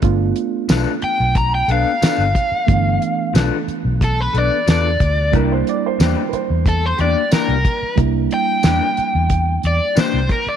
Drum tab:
HH |xxxxxxxx|xxxxxxxx|xxxxxxxx|xxxxxxxx|
TB |--x---x-|--x---x-|--x---x-|--x---x-|
SD |--o---o-|--o---o-|--o---o-|--o---o-|
BD |o---o--o|o---o--o|o---o--o|o---o--o|